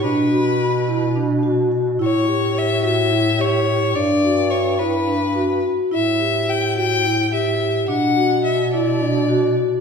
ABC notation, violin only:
X:1
M:7/8
L:1/8
Q:1/4=107
K:Amix
V:1 name="Violin"
B4 z3 | c2 e e2 c2 | d2 c B3 z | e2 g g2 e2 |
f2 e d3 z |]